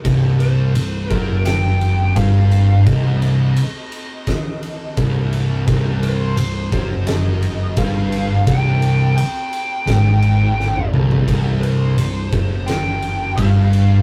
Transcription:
0.05 C1 C2, kick, ride
0.40 C5, ride
0.74 C1 C2, ride
1.10 F#1 F#2 A#4, kick, ride
1.45 G5, snare, ride
1.81 ride
2.16 G1 G2 F5, kick, ride
2.51 ride
2.85 C1 C2 D#5, kick, ride
3.22 ride
3.57 ride
3.92 ride
4.27 kick, snare, ride
4.63 ride
4.97 C1 C2, kick, ride
5.33 ride
5.67 C1 C2, kick, ride
6.03 C5, ride
6.37 C1 C2, ride
6.72 F#1 F#2, kick, ride
7.07 D#5, snare, ride
7.42 ride
7.77 G1 G2 F5, kick, ride
8.12 ride
8.46 C1 C2 G5, kick, ride
8.82 ride
9.16 G5, ride
9.53 ride
9.86 G#1 G#2, kick, snare, ride
10.22 ride
10.60 snare
10.76 high tom
10.92 C1 C2, mid tom
11.11 floor tom
11.27 C1 C2, kick, ride
11.61 C5, ride
11.97 C1 C2, ride
12.32 F#1 F#2, kick, ride
12.66 G5, snare, ride
13.02 ride
13.37 G1 G2 F5, kick, ride
13.73 ride

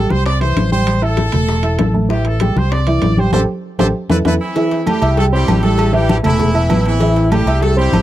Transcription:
Already playing: G3 G4 G5
0.10 C2 C5, high bongo, high conga
0.25 C4 C5 D5 C6, high bongo, high timbale
0.40 E3 E4 C5 E5, high bongo, high conga, high timbale
0.57 A1, high bongo, low bongo, high conga, high timbale
0.72 G3 G4 C5 G5, high conga
0.87 high bongo, high conga, high timbale
1.02 E4 A4 E5 E6, high bongo, high conga
1.17 high bongo, high conga, high timbale
1.32 E1 A3 A4 A5, high bongo, high conga, low conga, high timbale
1.49 high bongo, high conga
1.63 E4 E5 E6, high bongo, high conga, high timbale
1.79 A1, high bongo, low bongo, high conga, high timbale, low timbale
1.94 A3 A4 A5, high conga
2.09 E3 E4 G4 E5, high bongo, high conga
2.25 A4, high bongo, high conga, high timbale
2.40 G3 G4 G5, high bongo, high conga, high timbale
2.56 C2 C5, high bongo, high conga
2.72 C4 C5 D5 C6, high bongo, high conga, high timbale
2.87 E3 E4 E5, high bongo, high conga, high timbale
3.02 A1, high bongo, low bongo, high conga, high timbale, low timbale
3.17 G3 G4 C5 G5, high conga
3.32 A1 G4 A4 C5, low bongo, high conga, high timbale
3.78 A1 G4 A4 C5, low bongo, high conga, high timbale
4.09 E2 E4 A4 B4, low bongo, high conga, high timbale
4.25 E2 E4 A4 B4, low bongo, high conga, high timbale
4.40 E3 C4 E4
4.56 E3 E4 E5, cowbell, high conga, low agogo
4.71 cowbell, high conga
4.86 G3 A3 E4 G4 A4 A5, cowbell, high conga, low agogo
5.02 C2 E4 E5 E6, cowbell, low agogo
5.17 G3 A3 E4 G4 A4 G5, cowbell, high conga
5.32 G3 C4 E4 G4 C5 C6, high conga
5.48 A1, cowbell, high conga, low timbale, low agogo
5.63 G3 A3 E4 G4 A4 G5, cowbell
5.78 cowbell, high conga, low agogo
5.93 E3 G3 E4 G4 E5, high conga
6.09 G3 E4 G4, cowbell, high conga, low agogo
6.23 E1 E3 A3 B3 E4 A4 A5, cowbell, high conga, low conga, low agogo
6.40 cowbell, high conga, low conga
6.54 E4 E5 E6, high conga, low agogo
6.69 A1 B3 B4 B5, cowbell, high conga, low timbale, low agogo
6.85 E3 C4 E4, cowbell, high conga
7.00 E3 E4 E5, cowbell, high conga, low agogo
7.16 cowbell, high conga
7.32 G3 A3 E4 G4 A4 A5, cowbell, high conga, low agogo
7.46 C2 E4 E5 E6, cowbell, low agogo
7.61 G3 A3 E4 G4 A4 G5, cowbell, high conga
7.76 G3 C4 E4 G4 C5 C6, high conga
7.92 A1, cowbell, high conga, low timbale, low agogo

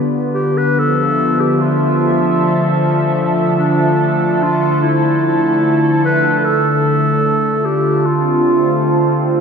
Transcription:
Already playing: D3 B3 B4
0.35 G4
0.57 B4
0.64 F3
0.79 A4
0.99 E5
1.40 G4
1.56 A3
1.61 F4
2.16 A4
3.58 D4
4.43 F4
4.83 E4
6.05 B4
6.38 B4
6.45 A4
7.53 F4
7.66 G4
8.06 C4 F4

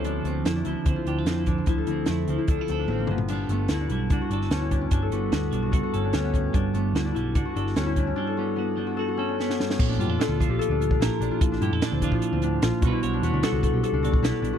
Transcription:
Already playing: D2 D3 A3 C4 E4 F#4 A4
0.04 F3 D4, closed hi-hat
0.24 D2 A3 C4, closed hi-hat
0.45 F2 E4, snare, closed hi-hat
0.56 D4
0.65 D2 F3 E4, closed hi-hat
0.85 D2 C4 E4, kick, closed hi-hat
0.96 F4
1.06 D2 D4 G4, closed hi-hat
1.18 A4
1.25 F2 C4, snare, closed hi-hat
1.38 E4
1.46 D3 D4, kick, closed hi-hat
1.58 C4
1.66 D2 F3 E4, kick, closed hi-hat
1.78 A4
1.87 D2 C4 E4, closed hi-hat
2.06 F2 A3, snare, closed hi-hat
2.11 E4
2.28 D2 F3 C4, closed hi-hat
2.38 E4
2.48 D2 D4 A4, kick, closed hi-hat
2.59 E4 F4
2.68 D2 C4 A4, closed hi-hat
2.79 D4
2.87 A1 C4, high tom
2.93 C4
3.00 A#3
3.07 G1 G2 B3, mid tom
3.18 floor tom
3.28 G3 D4, closed hi-hat, crash
3.49 G1 A3 B3, closed hi-hat
3.68 D2 E4 F#4, snare, closed hi-hat
3.81 D4
3.89 B1 G3 E4, closed hi-hat
4.10 C#2 D4 F#4, kick, closed hi-hat
4.21 F#4
4.30 G1 D4 A4, closed hi-hat
4.41 snare
4.50 D2 B3 C#4, snare, closed hi-hat
4.61 E4
4.71 G2 D4, kick, closed hi-hat
4.81 C#4
4.91 G1 G3 D4, kick, closed hi-hat
5.02 A4
5.11 G1 B3 F#4, closed hi-hat
5.32 D2 B3 F#4, snare, closed hi-hat
5.52 B1 G3 D4, closed hi-hat
5.62 F#4
5.72 C#2 F#4 A4, kick, closed hi-hat
5.83 F#4
5.94 G1 C#4 A4, closed hi-hat
6.04 D4
6.13 D2 B3 C#4, snare, closed hi-hat
6.24 B3
6.33 G2 C#4, kick, closed hi-hat
6.53 G1 G3 D4, kick, closed hi-hat
6.74 G1 A3 B3, closed hi-hat
6.93 D2 E4 F#4, snare, closed hi-hat
7.05 D4
7.14 B1 G3 E4, closed hi-hat
7.35 C#2 D4 F#4, kick, closed hi-hat
7.45 F#4
7.56 G1 D4 A4, closed hi-hat
7.67 snare
7.76 D2 B3 C#4, snare, closed hi-hat
7.87 E4
7.96 G2 D4, kick, closed hi-hat
8.07 C#4
8.16 G3 D4
8.27 A4
8.37 B3 F#4
8.56 B3 F#4
8.77 G3 D4
8.87 F#4
8.97 F#4 A4
9.08 F#4
9.17 C#4 A4
9.29 D4
9.39 B3 C#4, snare
9.49 B3, snare
9.59 G2 C#4, snare
9.70 snare
9.79 A#1 A#2, kick, crash
9.89 D4, snare
9.98 G2 F4 G4, closed hi-hat
10.07 F2 D4 A4
10.19 D4 A4, snare, closed hi-hat
10.28 D2 F4
10.40 F3 F4 A4, kick, closed hi-hat
10.49 A#1 G4
10.59 A4, closed hi-hat
10.69 D2 D4
10.81 F4, closed hi-hat
10.90 D4, kick
10.99 A#1 A#2 E4 A#4, snare, closed hi-hat
11.20 A#1 D4, closed hi-hat
11.31 F4
11.41 A#1 A#2, kick, closed hi-hat
11.52 D4, snare
11.61 G2 E4 G4, closed hi-hat
11.72 F2 A4
11.82 D4, snare, closed hi-hat
11.92 D2 C4
12.02 F3 D4 F4, kick, closed hi-hat
12.11 A#1 F4, kick
12.22 closed hi-hat
12.32 D2 C4
12.42 A2 D4, closed hi-hat
12.62 A#1 A#2 F4, snare, closed hi-hat
12.81 B1 B2 G3 F#4, kick, closed hi-hat
12.85 B3 F#4 B4
12.93 E4
13.03 B1 C#5, closed hi-hat
13.13 D4
13.22 E2 B3 F#4, closed hi-hat
13.33 D2 D4
13.43 G3 F#4 A4, snare, closed hi-hat
13.52 C#2 F#4
13.63 A4, kick, closed hi-hat
13.73 B1 G4
13.83 A4, closed hi-hat
13.92 C#2 D4
14.03 B2 F#4 D5, closed hi-hat
14.12 D4, kick
14.22 B1 B3 E4, snare, closed hi-hat
14.42 B1 B2 D4, closed hi-hat
14.53 F#4

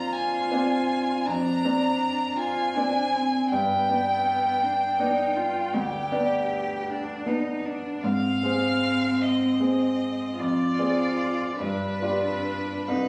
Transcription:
Already playing: F2 C4 D4 F4 D5 A#5
0.13 G#5
0.51 C4 D4 D5
1.25 F2 D4 A#5
1.65 C4 D4 D5
2.37 F4 G#5
2.74 C4 D4 D5
3.14 C4
3.51 G2 B3 G5
3.89 B3 D4 D5
4.63 D4
4.99 B3 D4 D#4 D5
5.37 F4
5.74 D2 G4
6.11 B3 D4 D5
6.90 D4
7.26 B3 D4 D#4 D5
7.65 D4
8.04 G#2 C4 F5
8.43 C4 G#4 C5
9.21 D#5
9.60 C4 G#4 C5
10.38 F2 F4 D5
10.79 C4 G#4 D5
11.60 G2 D4 B4
12.02 F4 G4 D5
12.88 C2 D#4 B4

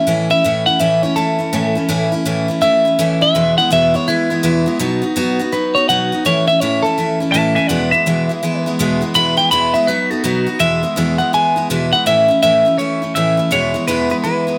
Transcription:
Already playing: E5
0.07 A2 E3 A3 C#4 E4
0.30 A3 C#4 E4 E5
0.44 A2 E3 A3 C#4 E4
0.66 A3 C#4 E4 F#5
0.79 A2 E3 A3 C#4 E4 E5
1.02 A3 C#4 E4 C#5
1.16 E3 A3 C#4 E4 A4
1.39 A3 C#4 E4
1.53 A2 E3 A3 C#4 E4
1.75 A3 C#4 E4
1.89 A2 E3 A3 C#4 E4
2.12 A3 C#4 E4
2.25 A2 E3 A3 C#4 E4
2.48 A3 C#4 E4
2.61 E3 A3 C#4 E4 E5
2.85 A3 C#4 E4
2.99 A2 E3 A3 C#4 E4
3.21 A3 C#4 E4 E5
3.35 E2 B2 E3 G#3 B3 E4
3.58 E3 G#3 B3 E4 F#5
3.71 E2 B2 E3 G#3 B3 E4 E5
3.94 E3 G#3 B3 E4 C#5
4.08 E3 G#3 B3 E4
4.30 E3 G#3 B3 E4
4.43 E2 B2 E3 G#3 B3 E4
4.66 E3 G#3 B3 E4
4.79 B2 F#3 B3 D#4 F#4
5.02 B3 D#4 F#4
5.16 B2 F#3 B3 D#4 F#4
5.39 B3 D#4 F#4
5.52 F#3 B3 D#4 F#4 B4
5.75 B3 D#4 F#4 C#5
5.89 B2 F#3 B3 D#4 F#4 F#5
6.12 B3 D#4 F#4
6.25 A2 E3 A3 C#4 E4 C#5
6.47 A3 C#4 E4 E5
6.60 A2 E3 A3 C#4 E4 C#5
6.83 C#4 E4 A4
6.98 E3 A3 C#4 E4
7.20 A3 C#4 E4
7.31 A2 E3 A3 E5 A5
7.35 C#4 E4
7.55 A3 C#4 E4 E5 G#5
7.67 E2 B2 E3 G#3 B3 E4 D5 F#5
7.91 E3 G#3 B3 E4 E5
8.06 E2 B2 E3 G#3 B3 E4
8.29 E3 G#3 B3 E4
8.43 E3 G#3 B3 E4
8.66 E3 G#3 B3 E4
8.79 E2 B2 E3 G#3 B3 E4
9.01 E3 G#3 B3 E4
9.14 E2 B2 E3 G#3 B3 E4 B5
9.37 E3 G#3 B3 E4 G5
9.51 E2 B2 E3 G#3 B3 E4 B5
9.74 E3 G#3 B3 E4 E5
9.87 F#3 B3 D#4 F#4 B4
10.10 B3 D#4 F#4 A4
10.23 B2 F#3 B3 D#4 F#4
10.47 B3 D#4 F#4
10.59 E2 B2 E3 G#3 B3 E4 E5
10.83 E3 G#3 B3 E4
10.96 E2 B2 E3 G#3 B3 E4
11.18 E3 G#3 B3 E4 F#5
11.33 E3 G#3 B3 E4 G#5
11.56 E3 G#3 B3 E4
11.70 E2 B2 E3 G#3 B3 E4
11.92 E3 G#3 B3 E4 F#5
12.06 A2 E3 A3 C#4 E4 E5
12.28 A3 C#4 E4
12.43 A2 E3 A3 C#4 E4 E5
12.65 A3 C#4 E4
12.78 E3 A3 C#4 E4 C#5
13.02 A3 C#4 E4
13.15 A2 E3 A3 C#4 E4 E5
13.37 A3 C#4 E4
13.51 E2 B2 E3 G#3 B3 E4 C#5
13.74 E3 G#3 B3 E4
13.87 E2 B2 E3 G#3 B3 E4 B4
14.10 E3 G#3 B3 E4 B4
14.24 E3 G#3 B3 E4 B4
14.47 E3 G#3 B3 E4

